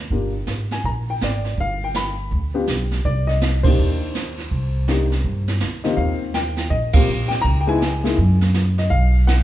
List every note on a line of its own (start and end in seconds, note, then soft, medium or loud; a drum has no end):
0.10 0.45 G1 medium
0.10 0.32 A#3 soft
0.10 0.32 D4 soft
0.10 0.32 F4 soft
0.10 0.32 G4 soft
0.10 brush sweep soft
0.10 kick soft
0.47 0.82 G#1 medium
0.47 snare medium
0.47 hi-hat pedal soft
0.71 0.85 G#5 medium
0.71 snare soft
0.84 1.18 A#1 medium
0.84 0.91 A#5 medium
0.84 brush sweep soft
0.84 kick soft
1.10 1.21 G5 medium
1.21 1.56 G#1 medium
1.21 1.57 D5 medium
1.21 snare medium
1.21 hi-hat pedal soft
1.45 snare soft
1.57 2.27 G1 medium
1.57 1.83 F5 medium
1.57 brush sweep soft
1.57 kick soft
1.84 1.95 G5 medium
1.94 2.29 B5 medium
1.94 snare medium
1.94 hi-hat pedal medium
2.31 2.66 D2 medium
2.31 brush sweep soft
2.31 kick soft
2.54 2.67 B3 medium
2.54 2.67 D4 medium
2.54 2.67 F4 medium
2.54 2.67 G4 medium
2.67 3.02 B1 medium
2.67 snare medium
2.67 hi-hat pedal medium
2.92 snare soft
3.05 3.75 C2 medium
3.05 3.29 D5 medium
3.05 brush sweep soft
3.05 kick soft
3.27 3.65 D#5 medium
3.27 snare soft
3.41 snare medium
3.41 hi-hat pedal soft
3.63 4.12 A#3 medium
3.63 4.12 D4 medium
3.63 4.13 D#4 medium
3.63 4.13 G4 medium
3.63 5.57 C5 medium
3.63 kick medium
3.63 ride medium
3.78 4.48 D#2 medium
3.78 brush sweep soft
4.15 snare soft
4.15 hi-hat pedal medium
4.38 snare soft
4.51 5.21 C2 medium
4.51 brush sweep soft
4.51 kick soft
4.88 5.09 A#3 soft
4.88 5.09 D4 soft
4.88 5.09 D#4 soft
4.88 5.09 G4 medium
4.88 snare medium
4.88 hi-hat pedal medium
5.12 snare soft
5.24 5.59 G2 medium
5.24 brush sweep soft
5.24 kick soft
5.48 snare soft
5.60 5.96 D2 medium
5.60 snare soft
5.60 hi-hat pedal medium
5.84 6.32 D#3 medium
5.84 6.32 A#3 medium
5.84 6.32 C4 medium
5.84 6.32 F4 medium
5.84 6.33 G4 medium
5.84 5.98 D#5 medium
5.84 snare soft
5.97 6.67 D#2 medium
5.97 6.35 F5 medium
5.97 brush sweep soft
5.97 kick soft
6.34 6.72 G5 medium
6.34 snare medium
6.34 hi-hat pedal medium
6.57 snare soft
6.70 7.05 A#1 medium
6.70 6.92 D#5 medium
6.70 brush sweep soft
6.70 kick soft
6.93 7.07 A#3 medium
6.93 7.07 C4 medium
6.93 7.07 F4 medium
6.93 7.07 G4 medium
6.93 7.28 F5 medium
6.93 kick medium
6.93 crash medium
7.07 7.42 A#1 medium
7.07 hi-hat pedal soft
7.28 7.44 G5 medium
7.28 snare soft
7.42 8.14 C#2 medium
7.42 7.56 A#5 loud
7.42 brush sweep soft
7.42 kick soft
7.61 7.69 G5 medium
7.67 7.80 G#3 medium
7.67 7.80 B3 medium
7.67 7.81 D#4 medium
7.67 7.80 E4 medium
7.67 8.38 G#5 medium
7.82 snare medium
7.82 hi-hat pedal medium
8.04 8.16 G#3 medium
8.04 8.16 A#3 medium
8.04 8.16 D#4 medium
8.04 8.17 E4 medium
8.04 snare soft
8.18 8.88 F#2 medium
8.18 brush sweep soft
8.18 kick soft
8.41 snare soft
8.54 snare medium
8.54 hi-hat pedal soft
8.78 8.91 D#5 medium
8.78 snare soft
8.90 9.43 B1 medium
8.90 9.25 F5 medium
8.90 brush sweep soft
8.90 kick soft
9.27 9.43 F#5 medium
9.27 snare medium
9.27 hi-hat pedal soft